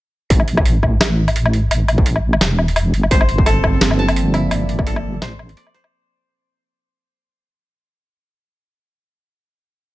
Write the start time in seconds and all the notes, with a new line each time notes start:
0.30 A1, kick, closed hi-hat
0.40 low woodblock
0.48 closed hi-hat
0.57 kick, low woodblock
0.65 closed hi-hat
0.83 kick, low woodblock
1.00 A1, snare, closed hi-hat, low woodblock
1.28 closed hi-hat, low woodblock
1.36 closed hi-hat
1.46 low woodblock
1.53 closed hi-hat
1.71 A1, closed hi-hat, low woodblock
1.88 closed hi-hat, low woodblock
1.98 kick
2.06 closed hi-hat
2.16 low woodblock
2.33 low woodblock
2.41 E1, snare, closed hi-hat
2.59 low woodblock
2.68 closed hi-hat
2.76 closed hi-hat, low woodblock
2.93 G1, closed hi-hat
3.03 low woodblock
3.11 G1 C4 C5, kick, closed hi-hat
3.21 low woodblock
3.29 closed hi-hat
3.38 A#3, kick
3.46 A4, closed hi-hat, low woodblock
3.54 F3
3.64 kick, low woodblock
3.81 G1, snare, closed hi-hat
3.91 low woodblock
3.97 D5 A5
4.08 closed hi-hat, low woodblock
4.16 closed hi-hat
4.34 E4, closed hi-hat, low woodblock
4.51 G1, closed hi-hat, low woodblock
4.69 closed hi-hat
4.79 kick, low woodblock
4.87 A4, closed hi-hat
4.96 low woodblock
5.21 A1 C5, snare, closed hi-hat, low woodblock
5.39 low woodblock
5.49 closed hi-hat
5.57 D5, closed hi-hat
5.67 low woodblock
5.74 C5, closed hi-hat
5.84 low woodblock